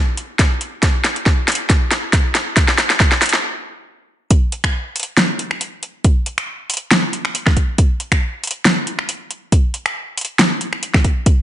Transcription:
0.17 closed hi-hat
0.39 kick, snare, closed hi-hat
0.61 closed hi-hat
0.83 kick, snare, closed hi-hat
1.04 snare, closed hi-hat
1.16 closed hi-hat
1.26 kick, snare
1.48 snare, closed hi-hat, open hi-hat
1.55 closed hi-hat
1.70 kick, snare, closed hi-hat
1.91 snare, closed hi-hat
2.13 kick, snare, closed hi-hat
2.35 snare, closed hi-hat
2.57 kick, snare, closed hi-hat
2.68 snare
2.78 snare, closed hi-hat
2.90 snare, closed hi-hat
3.00 kick, snare
3.12 snare
3.22 snare, closed hi-hat, open hi-hat
3.29 closed hi-hat
3.33 snare
4.31 kick, closed hi-hat
4.52 closed hi-hat
4.64 finger snap, kick, closed hi-hat
4.96 closed hi-hat, open hi-hat
5.03 closed hi-hat
5.17 snare, closed hi-hat
5.39 closed hi-hat
5.51 finger snap
5.61 closed hi-hat
5.83 closed hi-hat
6.04 kick, closed hi-hat
6.26 closed hi-hat
6.38 finger snap, closed hi-hat
6.70 closed hi-hat, open hi-hat
6.77 closed hi-hat
6.91 finger snap, snare, closed hi-hat
7.13 closed hi-hat
7.25 finger snap
7.35 closed hi-hat
7.47 finger snap, kick, snare
7.57 kick, closed hi-hat
7.78 kick, closed hi-hat
8.00 closed hi-hat
8.12 finger snap, kick, closed hi-hat
8.44 closed hi-hat, open hi-hat
8.51 closed hi-hat
8.65 snare, closed hi-hat
8.87 closed hi-hat
8.99 finger snap
9.09 closed hi-hat
9.31 closed hi-hat
9.52 kick, closed hi-hat
9.74 closed hi-hat
9.86 finger snap, closed hi-hat
10.18 closed hi-hat, open hi-hat
10.25 closed hi-hat
10.39 finger snap, snare, closed hi-hat
10.61 closed hi-hat
10.73 finger snap
10.83 closed hi-hat
10.94 finger snap, kick, snare
11.05 kick, closed hi-hat
11.26 kick, closed hi-hat

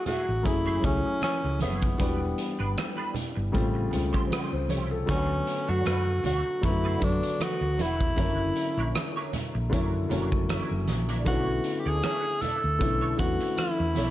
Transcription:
Already playing: F#3 A3 C#4 E4 G#4
0.06 A3 E4 F#4 G#4 E5, muted fingered electric bass stroke, cross-stick, closed hi-hat, low conga
0.28 A1, muted clean electric guitar stroke
0.43 F#1 F#3 A3 C#4 E4 G#4, muted clean electric guitar stroke, kick, closed hi-hat, muted conga
0.66 A3 E4 G#4 C#5
0.81 C#2 F#3 A3 C#4 E4 G#4, muted clean electric guitar stroke, kick, closed hi-hat, muted conga, low conga
1.06 muted clean electric guitar stroke
1.22 C#4, muted clean electric guitar stroke, cross-stick, closed hi-hat, high conga
1.44 C#2, muted clean electric guitar stroke
1.60 F#1 A3 B3 E4 G#4 C#5, cross-stick, closed hi-hat, high conga
1.82 muted clean electric guitar stroke, kick, closed hi-hat
1.98 E1 E3 G3 B3 D4 F#4 G4 B4, kick, closed hi-hat, muted conga
2.08 G4
2.20 muted clean electric guitar stroke
2.38 muted clean electric guitar stroke, closed hi-hat
2.59 G1 B3 D4 G4 B4
2.77 muted clean electric guitar stroke, cross-stick, closed hi-hat, high conga
2.97 B3 D4 G4 B4
3.14 muted clean electric guitar stroke, muted fingered electric bass stroke, closed hi-hat, low conga
3.35 G1, muted clean electric guitar stroke
3.52 A1 C#3 G3 A3 C4 F4, muted clean electric guitar stroke, kick, closed hi-hat, muted conga, low conga
3.74 muted clean electric guitar stroke
3.90 C#2 C#3 G3 A3 C4, closed hi-hat, low conga
3.94 F4
4.13 A3 C#4 G4 C5, kick
4.30 A3 C#4 G4 C5, cross-stick, closed hi-hat, high conga
4.51 C#2 C5, muted clean electric guitar stroke
4.69 C2 A3 C#4 G4 C5 C#5, closed hi-hat, high conga
4.90 A4, muted clean electric guitar stroke
5.06 D2 D3 F#3 A3 B3 D4 F#4 B4, kick, closed hi-hat, muted conga
5.10 C#4
5.47 muted clean electric guitar stroke, closed hi-hat
5.68 F#2 A3 D4 F#4 C#5
5.85 F#2 A3 D4 F#4 B4, cross-stick, closed hi-hat, high conga
6.06 muted clean electric guitar stroke
6.24 D2 A3 D4 F#4 C#5, closed hi-hat, low conga
6.46 muted clean electric guitar stroke
6.61 F#2 D3 F#3 A3 B3 E4 F#4, muted clean electric guitar stroke, kick, closed hi-hat, muted conga
6.84 A3 D4 F#4 B4
7.00 F#2 D3 F#3 A3 B3 F#4, muted clean electric guitar stroke, kick, closed hi-hat, muted conga, low conga
7.04 D4
7.22 muted clean electric guitar stroke, closed hi-hat
7.40 F#4, muted clean electric guitar stroke, cross-stick, closed hi-hat, high conga
7.61 D2, muted clean electric guitar stroke
7.79 E1 A3 D4 E4 F#4 B4, closed hi-hat, high conga
8.00 muted clean electric guitar stroke, kick, closed hi-hat
8.16 F#1 D3 F#3 A#3 C#4 D4 E4 A#4 C#5, kick, closed hi-hat, muted conga
8.39 muted clean electric guitar stroke
8.56 muted clean electric guitar stroke, closed hi-hat
8.77 A#1 D4 E4 A#4 C#5
8.95 muted clean electric guitar stroke, cross-stick, closed hi-hat, high conga
9.16 D4 E4 A#4 C#5
9.33 muted clean electric guitar stroke, muted fingered electric bass stroke, closed hi-hat, low conga
9.54 A#1, muted clean electric guitar stroke
9.70 F#2 D3 F#3 A#3 C#4 D4 E4 A#4 C#5, kick, closed hi-hat, muted conga, low conga
9.93 muted clean electric guitar stroke
10.09 F#1 D3 F#3 A#3 C#4 D4 E4 F#4 A#4 C#5, closed hi-hat, low conga
10.31 muted clean electric guitar stroke, kick
10.49 D4 E4 A#4 C#5, cross-stick, closed hi-hat, high conga
10.71 F#1
10.88 A#1, muted clean electric guitar stroke, cross-stick, closed hi-hat, high conga
11.09 D4 E4 A#4 D5, closed hi-hat
11.25 B1 D3 A3 B3 C#4 D4 E4 F#4 A4 C#5, kick, closed hi-hat, muted conga
11.64 muted clean electric guitar stroke, closed hi-hat
11.80 G4
11.86 D2 D4 E4 G#4 A4 D5
12.03 D4 E4 A4 C#5, cross-stick, closed hi-hat, high conga
12.24 muted clean electric guitar stroke
12.42 D4 E4 A4 D5, muted fingered electric bass stroke, closed hi-hat, low conga
12.64 D2, muted clean electric guitar stroke
12.79 B1 D3 A3 B3 C#4 E4, muted clean electric guitar stroke, kick, closed hi-hat, muted conga
13.01 D4 E4 A4 C#5
13.17 E2 D3 A3 B3 C#4 E4 F#4, muted clean electric guitar stroke, kick, closed hi-hat, muted conga, low conga
13.40 muted clean electric guitar stroke, closed hi-hat
13.57 E4, muted clean electric guitar stroke, cross-stick, closed hi-hat, high conga
13.79 E2, muted clean electric guitar stroke
13.95 B1 D4 E4 A4 C#5, cross-stick, closed hi-hat, high conga

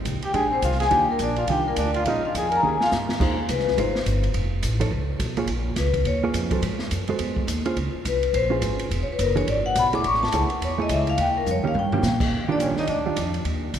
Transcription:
0.05 C2, kick, hi-hat pedal, ride
0.22 G4 G5, muted upright bass stroke, ride
0.34 A#1 G#3 D4 G4 G#4 G#5, kick, ride
0.50 C4 C5
0.62 C2 F4 F5, kick, hi-hat pedal, ride
0.72 snare
0.80 G#4 G#5, snare, ride
0.91 D#2 D#3 G3 D4 F4 G4 G5, kick, ride
1.10 A#3 A#4
1.19 A#1 D4, kick, hi-hat pedal, ride
1.24 D5
1.36 F4 F5, ride
1.48 C2 D#3 G3 D4 F4 G4, kick, ride
1.52 G5
1.66 A#3 A#4
1.76 D2 D4, kick, hi-hat pedal, ride
1.81 D5
1.94 F4 F5, ride
2.05 A#1 G#3 C#4 D#4 F4 D#5, kick, ride
2.24 F4 F5, muted upright bass stroke
2.34 F2 G#4 G#5, kick, hi-hat pedal, ride
2.51 A#4, ride
2.56 A#5
2.63 D#2 D#3 A#3 C#4 G4 G#4
2.67 G#5
2.81 F4 F5, snare
2.92 G2, snare, hi-hat pedal
3.09 snare
3.20 D#2 G#3 D#4 F4 C5, kick, crash
3.49 C2 B4, kick, hi-hat pedal, ride
3.59 snare
3.68 snare
3.77 G#1 G#3 D#4 F4 C5, kick, ride
3.95 snare
4.06 G1, kick, hi-hat pedal, ride
4.23 ride
4.34 F1, kick, ride
4.62 A1, kick, hi-hat pedal, ride
4.80 F3 D#4 A4 C#5, ride
4.90 C#2, kick
5.19 B1, kick, hi-hat pedal, ride
5.37 A#3 F4 G#4 C#5, ride
5.47 A#1, kick, ride
5.76 C#2 B4, kick, snare, hi-hat pedal, ride
5.94 kick, ride
6.05 D#2 C#5, kick, ride
6.24 A#3 F4 G#4 C#5
6.33 F2, kick, hi-hat pedal, ride
6.51 G#3 F#4 A4 C5, kick, ride
6.62 G#2, kick, ride
6.79 snare
6.91 F#2, kick, hi-hat pedal, ride
7.08 G#3 F#4 A4 C5, ride
7.19 E2, kick, ride
7.36 kick
7.47 D#2, kick, hi-hat pedal, ride
7.65 C#4 F4 G#4 C5, ride
7.76 C#2, kick, ride
7.94 muted upright bass stroke
8.05 C2 B4, kick, hi-hat pedal, ride
8.23 ride
8.33 A#1 C5, kick, ride
8.50 C#4 F4 G#4 C5
8.62 G#1, kick, hi-hat pedal, ride
8.79 ride
8.91 E1, kick, ride
9.03 C#5
9.12 B4
9.19 F#1 A#4, kick, hi-hat pedal, ride
9.36 E3 D4 G#4 C#5, ride
9.48 G#1 D5, kick, ride
9.66 F#5
9.75 B1 B5, kick, hi-hat pedal, ride
9.93 A3 E4 G#4 C#5 D6, ride
10.04 A1 C#6, kick, ride
10.14 snare
10.23 A5, snare
10.32 C#2 A3 E4 G#4 C#5, kick, hi-hat pedal, ride
10.50 muted upright bass stroke, ride
10.61 E2 C#5, kick, ride
10.78 A3 E4 G#4 C#5 D#5
10.89 C#2 E5, kick, hi-hat pedal, ride
11.07 F5, ride
11.18 D#2 G5, kick, ride
11.38 A#4
11.46 F2, hi-hat pedal, high tom
11.51 C#5
11.64 D#3 A#3 C#4 G4 F5, muted upright bass stroke
11.74 G2, high tom
11.79 G5
11.92 D#3 A#3 C#4 G4, floor tom
12.03 A#2, snare, hi-hat pedal
12.20 kick, crash
12.31 D#2, kick
12.49 D#3 G3 D4 F4 D5, muted upright bass stroke
12.59 A#1 C#4, kick, hi-hat pedal, ride
12.64 C#5
12.77 D#4 D#5, muted upright bass stroke, snare
12.87 D2 D4 D5, kick, ride
13.06 D#3 G3 D4 F4
13.16 F2, kick, hi-hat pedal, ride
13.34 ride
13.44 D#2, kick, ride
13.74 C#2, kick, hi-hat pedal, ride

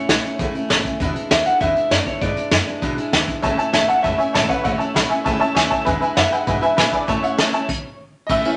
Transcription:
Already playing: C#5
0.08 B1 E3 A3 C#4 E4, snare, closed hi-hat
0.24 A3 C#4 E4, muted upright bass stroke, closed hi-hat
0.39 C#2 A2 E3 A3 C#4 E4, kick, closed hi-hat
0.54 A3 C#4 E4, muted upright bass stroke, closed hi-hat
0.69 A1 E3 A3 C#4 E4, snare, closed hi-hat
0.85 A3 C#4 E4, muted upright bass stroke, kick, closed hi-hat
1.00 E2 B2 E3 G#3 D4 E4, kick, closed hi-hat
1.14 E3 G#3 D4 E4, muted upright bass stroke, closed hi-hat
1.30 D2 E3 G#3 D4 E4 E5, snare, closed hi-hat
1.46 E3 G#3 D4 E4 F#5, muted upright bass stroke, closed hi-hat
1.60 E2 B2 E3 G#3 D4 E4 E5, kick, closed hi-hat
1.75 E3 G#3 D4 E4, closed hi-hat
1.90 F#2 E3 G#3 D4 E4 D5, snare, closed hi-hat
2.06 E3 G#3 D4 E4 C#5, kick, closed hi-hat
2.22 E2 G#2 B2 E3 G#3 D4 E4 D5, kick, closed hi-hat
2.36 E3 G#3 D4 E4, muted upright bass stroke, closed hi-hat
2.51 F#2 E3 G#3 D4 E4, snare, closed hi-hat
2.66 E3 G#3 D4 E4, muted upright bass stroke, closed hi-hat
2.82 E2 B2 E3 G#3 D4 E4, kick, closed hi-hat
2.97 E3 G#3 D4 E4, muted upright bass stroke, closed hi-hat
3.12 D2 E3 G#3 D4 E4, snare, closed hi-hat
3.27 E3 G#3 D4 E4, kick, closed hi-hat
3.42 C#2 A2 E3 A3 C#4 E4 C#5 E5 A5, kick, closed hi-hat
3.57 A3 C#4 E4 C#5 E5 A5, muted upright bass stroke, closed hi-hat
3.73 A1 E3 A3 C#4 E4 C#5 E5 A5, snare, closed hi-hat
3.88 C#4 E4 C#5 E5 F#5 A5, muted upright bass stroke, closed hi-hat
3.92 A3
4.02 F#1 A2 E3 A3 C#4 E4 C#5 E5 A5, kick, closed hi-hat
4.18 A3 C#4 E4 C#5 E5 G#5, closed hi-hat
4.33 G#1 E3 A3 C#4 E4 C#5 E5 A5, snare, closed hi-hat
4.48 C#4 E4 B4 C#5 E5 F#5, kick, closed hi-hat
4.53 A3
4.63 A1 A2 E3 A3 C#4 E4 C#5 E5 F#5, kick, closed hi-hat
4.78 C#4 E4 C#5 E5 A5, muted upright bass stroke, closed hi-hat
4.83 A3
4.94 B1 E3 A3 C#4 E4 C#5 E5 B5, snare, closed hi-hat
5.09 C#4 E4 C#5 E5 G#5, muted upright bass stroke, closed hi-hat
5.13 A3
5.24 C#2 A2 E3 A3 C#4 E4 C#5 E5 A5, kick, closed hi-hat
5.40 A3 C#4 E4 C#5 E5 A5, muted upright bass stroke, closed hi-hat
5.55 D2 E3 A3 C#4 E4 C#5 E5 G#5, snare, closed hi-hat
5.70 C#4 E4 C#5 E5 A5, kick, closed hi-hat
5.74 A3
5.85 E2 B2 E3 G#3 D4 E4 B4 E5 G#5, kick, closed hi-hat
6.01 E3 G#3 D4 E4 B4 E5 G#5, muted upright bass stroke, closed hi-hat
6.16 F#2 E3 G#3 D4 E4 B4 E5 F#5, snare, closed hi-hat
6.31 E3 G#3 D4 E4 B4 E5 F#5 G#5, muted upright bass stroke, closed hi-hat
6.47 E2 G#2 B2 E3 G#3 D4 E4 B4 E5 G#5, kick, closed hi-hat
6.61 E3 G#3 D4 E4 B4 E5 G#5, closed hi-hat
6.76 A#2 E3 G#3 D4 E4 B4 E5 G#5, snare, closed hi-hat
6.92 E3 G#3 D4 E4 B4 D5 E5 G#5, kick, closed hi-hat
7.07 A2 E3 A3 C#4 E4 C#5 E5 A5, kick, closed hi-hat
7.22 A3 C#4 E4 C#5 E5 F#5, closed hi-hat
7.37 C#3 E3 A3 C#4 E4 C#5 E5 A5, snare, closed hi-hat
7.52 A3 C#4 E4 C#5 E5 A5, muted upright bass stroke, closed hi-hat
7.69 kick, crash
8.27 A1 A2 E3 A3 C#4 D#5, kick, ride
8.31 E4 E5
8.44 E3 A3 C#4 E4, ride

